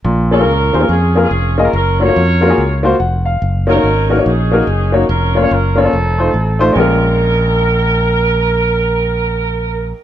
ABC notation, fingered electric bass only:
X:1
M:4/4
L:1/8
Q:"Swing" 1/4=144
K:Bbm
V:1 name="Fingered electric bass" clef=bass
B,,,2 D,, E,, F,,2 F,,,2 | G,,,2 F,,2 D,,2 F,,,2 | G,,,2 A,,,2 B,,,2 G,,,2 | F,,,2 G,,,2 F,,,2 =A,,,2 |
B,,,8- | B,,,8 |]